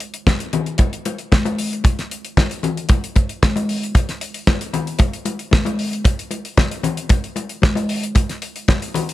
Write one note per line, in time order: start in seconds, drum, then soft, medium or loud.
0.00 closed hi-hat medium
0.14 closed hi-hat medium
0.27 kick loud
0.27 snare loud
0.27 high conga medium
0.40 closed hi-hat medium
0.53 closed hi-hat medium
0.53 low conga medium
0.66 closed hi-hat soft
0.78 kick loud
0.78 closed hi-hat medium
0.78 muted conga medium
0.93 closed hi-hat soft
1.05 closed hi-hat medium
1.05 muted conga medium
1.18 closed hi-hat soft
1.32 kick loud
1.32 snare loud
1.32 high conga medium
1.45 closed hi-hat soft
1.45 high conga loud
1.58 open hi-hat medium
1.73 closed hi-hat medium
1.84 kick loud
1.84 closed hi-hat medium
1.84 muted conga medium
1.99 snare soft
1.99 closed hi-hat medium
2.11 closed hi-hat medium
2.25 closed hi-hat soft
2.37 kick loud
2.37 snare loud
2.37 high conga medium
2.51 closed hi-hat medium
2.63 closed hi-hat medium
2.63 low conga medium
2.77 closed hi-hat soft
2.89 kick loud
2.89 closed hi-hat medium
2.89 muted conga medium
3.04 closed hi-hat soft
3.16 kick loud
3.16 closed hi-hat medium
3.16 muted conga medium
3.29 closed hi-hat soft
3.42 kick loud
3.42 snare loud
3.42 high conga medium
3.56 closed hi-hat soft
3.56 high conga medium
3.69 open hi-hat medium
3.83 closed hi-hat soft
3.95 kick loud
3.95 closed hi-hat medium
3.95 muted conga medium
4.09 snare soft
4.09 closed hi-hat soft
4.21 closed hi-hat medium
4.34 closed hi-hat medium
4.47 kick loud
4.47 snare loud
4.47 high conga medium
4.61 closed hi-hat medium
4.73 closed hi-hat medium
4.73 low conga medium
4.87 closed hi-hat soft
4.99 kick loud
4.99 closed hi-hat medium
4.99 muted conga medium
5.13 closed hi-hat soft
5.25 closed hi-hat medium
5.25 muted conga medium
5.39 closed hi-hat soft
5.51 kick loud
5.51 snare loud
5.51 high conga medium
5.65 closed hi-hat soft
5.65 high conga medium
5.79 open hi-hat medium
5.93 closed hi-hat soft
6.04 kick loud
6.04 closed hi-hat loud
6.04 muted conga medium
6.19 closed hi-hat medium
6.31 closed hi-hat medium
6.31 muted conga soft
6.45 closed hi-hat soft
6.57 kick loud
6.57 snare loud
6.57 high conga medium
6.71 closed hi-hat medium
6.83 closed hi-hat medium
6.83 low conga medium
6.97 closed hi-hat soft
7.09 kick loud
7.09 closed hi-hat medium
7.09 muted conga medium
7.24 closed hi-hat soft
7.36 closed hi-hat medium
7.36 muted conga medium
7.49 closed hi-hat soft
7.62 kick loud
7.62 snare loud
7.62 high conga medium
7.75 closed hi-hat medium
7.75 high conga loud
7.89 open hi-hat medium
8.03 closed hi-hat soft
8.15 kick loud
8.15 closed hi-hat loud
8.15 muted conga medium
8.29 snare soft
8.29 closed hi-hat soft
8.42 closed hi-hat medium
8.56 closed hi-hat soft
8.68 kick loud
8.68 snare loud
8.68 high conga medium
8.82 closed hi-hat medium
8.94 closed hi-hat medium
8.94 low conga medium
9.09 closed hi-hat soft